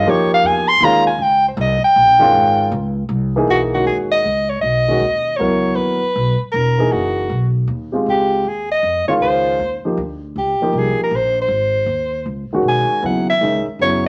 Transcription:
Already playing: soprano saxophone D#5
0.06 upright bass F2, grand piano F3 A#3 D#4 G4, soprano saxophone C#5
0.30 soprano saxophone F5, muted upright bass stroke
0.43 upright bass E2, soprano saxophone G#5
0.68 soprano saxophone C6
0.81 upright bass D#2, grand piano D#3 G#3 C#4 F4, soprano saxophone A#5
1.07 soprano saxophone G#5
1.19 upright bass C#2, soprano saxophone G5
1.48 soprano saxophone C5
1.57 upright bass C2, soprano saxophone D#5
1.83 soprano saxophone G5, muted upright bass stroke
1.96 upright bass A#1
2.19 grand piano D#3 G#3 C#4 F4
2.35 upright bass G#1
2.71 upright bass C#2
3.09 upright bass C2
3.36 grand piano E3 A#3 D#4 G#4
3.47 upright bass B1, soprano saxophone F#4
3.74 grand piano D#3 G#3 C#4 F#4, soprano saxophone F#4
3.86 upright bass D#2, soprano saxophone G#4
4.12 soprano saxophone D#5
4.26 upright bass C#2
4.49 soprano saxophone C#5
4.61 upright bass B1, soprano saxophone D#5
4.88 grand piano D#3 G#3 C#4 F#4
5.01 upright bass D#2
5.36 upright bass C#2, grand piano F#3 B3, soprano saxophone C#5
5.40 grand piano E4 A#4
5.76 upright bass D#2, soprano saxophone B4
6.02 muted upright bass stroke
6.16 upright bass B1
6.41 muted upright bass stroke
6.52 upright bass E1, soprano saxophone A#4
6.78 grand piano E3 A#3 D#4 G#4
6.92 upright bass F#1, soprano saxophone F#4
7.30 upright bass B1
7.68 upright bass D#2
7.92 grand piano G#3 C4 F4 G4
8.06 upright bass C#2, soprano saxophone G4
8.44 upright bass D#2, soprano saxophone G#4
8.72 soprano saxophone D#5
8.83 upright bass F2
9.08 grand piano D#3 G#3 C#4 F4, soprano saxophone C#5, muted upright bass stroke
9.21 upright bass C#2, soprano saxophone C5
9.60 upright bass D#2
9.85 grand piano F3 A#3 D#4 G4, muted upright bass stroke
9.97 upright bass D2
10.36 upright bass C#2, soprano saxophone G4
10.60 grand piano F3 A#3 D#4 G4, muted upright bass stroke
10.73 upright bass C2
10.78 soprano saxophone G#4
10.97 muted upright bass stroke
11.03 soprano saxophone A#4
11.11 upright bass A#1
11.16 soprano saxophone C5
11.41 soprano saxophone C5
11.48 upright bass G#1
11.86 upright bass D#2
12.26 upright bass C#2
12.51 grand piano D#3 G#3 C#4, muted upright bass stroke
12.55 grand piano F#4
12.63 upright bass B1
12.69 soprano saxophone G#5
12.89 muted upright bass stroke
13.03 upright bass D#2, grand piano C#3 F#3 B3 E4, soprano saxophone F#5
13.30 soprano saxophone E5
13.41 upright bass C#2, grand piano D#3 G#3 C#4 D#4
13.66 muted upright bass stroke
13.79 upright bass F#2, grand piano C#3 F#3 B3 E4, soprano saxophone C#5

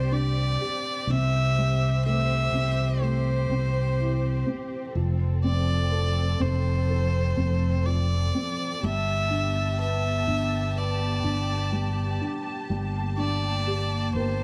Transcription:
Already playing: fingered electric bass C2, felt piano C3 D4 G4, string section C4 G4 D5, violin C5
0.12 felt piano D4, violin D5
0.61 felt piano G4
1.07 fingered electric bass C2, felt piano C3, string section G4 C5, violin E5
1.58 felt piano G3
2.05 felt piano A3, violin E5
2.52 fingered electric bass C2, felt piano C4
3.02 felt piano A3, violin C5
3.50 fingered electric bass C2, felt piano C4
3.99 felt piano E4
4.47 felt piano C4
4.95 fingered electric bass F1, string section F3 A4, felt piano F3
5.44 felt piano C4, violin D5
5.92 felt piano A4
6.40 fingered electric bass F1, felt piano C4, violin C5
6.89 felt piano A4
7.37 fingered electric bass F1, felt piano C4
7.86 felt piano F3, violin D5
8.35 felt piano C4
8.82 fingered electric bass G1, felt piano G3, string section B3 G4 A5, violin E5
9.30 felt piano D4
9.79 felt piano B4, violin E5
10.27 fingered electric bass G1, felt piano D4
10.75 felt piano B4, violin D5
11.24 fingered electric bass G1, felt piano D4
11.72 felt piano G3
12.21 felt piano D4
12.70 fingered electric bass G1, felt piano G3, string section A#3
13.17 felt piano D4, violin D5
13.67 felt piano G4
14.14 fingered electric bass G1, felt piano A#4, violin C5

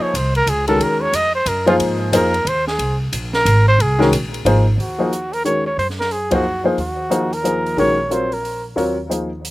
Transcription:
Already playing: upright piano F3 A#3 D#4 G#4 C5
0.01 trumpet C#5, muted upright bass stroke
0.14 upright bass C2, trumpet C5, hi-hat pedal, ride
0.35 trumpet A#4, ride
0.46 upright bass C#2, trumpet G#4, hi-hat pedal, ride
0.67 upright piano D#3 G#3 C#4 F#4 A#4, trumpet A4, ride
0.80 upright bass D#2, trumpet A#4, ride
1.01 trumpet C#5
1.13 upright bass F2, trumpet D#5, hi-hat pedal, ride
1.35 trumpet C5
1.46 upright bass F#2, trumpet A#4, hi-hat pedal, ride
1.66 upright piano F3 A#3 D#4 G#4 C5, trumpet F4, ride
1.79 upright bass G#2, ride
2.12 upright bass F2, upright piano F3 A#3 D#4 G#4 C5, trumpet A#4, hi-hat pedal, ride
2.34 ride
2.45 upright bass D#2, trumpet C5, ride
2.67 trumpet G#4, snare
2.79 upright bass C2, ride
3.12 upright bass A#1, hi-hat pedal, ride
3.33 trumpet A#4, snare
3.45 upright bass G#1, hi-hat pedal, ride
3.68 trumpet C5
3.79 upright bass C2, trumpet G#4, ride
3.99 upright piano D#3 G#3 C#4 F#4 A#4, snare
4.12 upright bass A#1, hi-hat pedal, ride
4.34 ride
4.45 upright bass G#1, upright piano F3 A#3 D#4 G#4 C5, ride
4.78 upright bass D#2, trumpet F#4, open hi-hat
4.99 upright piano F3 A#3 D#4 G#4 C5
5.13 closed hi-hat
5.33 trumpet A#4, open hi-hat
5.44 upright piano D#3 G#3 C#4 F#4 A#4, trumpet C#5, closed hi-hat
5.66 trumpet C#5
5.77 upright bass F#2, trumpet C5, open hi-hat
5.90 snare
6.00 trumpet A#4, snare
6.11 trumpet G#4, open hi-hat
6.31 upright piano F3 A#3 D#4 G#4 C5, trumpet F#4, kick, ride
6.64 upright piano F3 A#3 D#4 G#4 C5
6.77 upright bass D#2, trumpet F#4, open hi-hat
7.10 upright piano F3 A#3 D#4 G#4 C5, closed hi-hat
7.33 trumpet A#4, open hi-hat
7.44 upright piano F3 A#3 D#4 G#4 C5, closed hi-hat
7.66 open hi-hat
7.77 upright bass A#1, upright piano D#3 G#3 C#4 F#4 A#4, trumpet C#5, open hi-hat
8.10 upright piano F#3 C4 F4 A#4 C#5, trumpet C5, closed hi-hat
8.32 trumpet A#4, open hi-hat
8.45 open hi-hat
8.76 upright bass D#2, upright piano F#3 C4 F4 A#4 C#5, open hi-hat
9.09 upright piano F3 A#3 D#4 G#4 C5, closed hi-hat
9.45 closed hi-hat

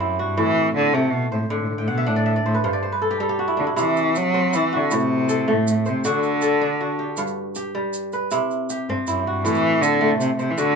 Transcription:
Already playing: kora C3 C4 G4
0.00 cello F#2, kora E4
0.19 cello G2, kora F#4
0.37 kora A2, cello E3
0.76 cello D3
0.93 cello C3, kora A3
1.12 cello B2
1.32 cello A2, kora C5
1.40 cello A2
1.48 cello A2, kora D3
1.54 cello A2
1.62 cello A2
1.70 cello A2
1.77 cello A2, kora G5
1.88 cello B2, kora F#5
1.98 kora E5
2.06 cello A2, kora D4 F#5
2.16 kora D5
2.26 kora E5
2.36 kora D5
2.45 cello A2, kora C5
2.54 kora B4
2.64 kora G2 C5, cello G2
2.73 kora D5
2.83 kora C5
2.92 kora B4
3.02 kora A4
3.11 kora G4
3.20 kora G3 A4
3.29 kora G4
3.39 kora F#4
3.48 kora E4
3.57 cello D3, kora D4
3.67 kora E4
3.76 kora C3 E4, cello E3, shaker
3.97 shaker
4.15 cello F#3, shaker
4.34 kora C4
4.53 cello E3, kora E4, shaker
4.73 cello D3, kora F#4
4.91 kora A2, cello C3, shaker
5.00 shaker
5.29 kora A4, shaker
5.48 kora A3
5.52 cello A2
5.67 shaker
5.86 cello C3, kora C5, shaker
6.04 kora D3 F#4, cello D3, shaker
6.23 shaker
6.42 kora A4, shaker
6.61 kora D4
6.81 kora F#4
6.99 kora G4
7.17 kora G2, shaker
7.27 shaker
7.55 kora G4, shaker
7.75 kora G3
7.93 shaker
8.12 kora B4, shaker
8.31 kora C3 E4, shaker
8.51 shaker
8.69 kora G4, shaker
8.89 cello G2, kora C4
9.07 cello F#2, kora E4, shaker
9.25 cello G2, kora F#4
9.44 kora A2, cello E3, shaker
9.55 shaker
9.81 cello D3, kora A4, shaker
10.01 kora A3
10.19 cello C3, shaker
10.36 cello C3, kora C5, shaker
10.50 cello E3
10.58 kora D3 F#4, cello D3, shaker

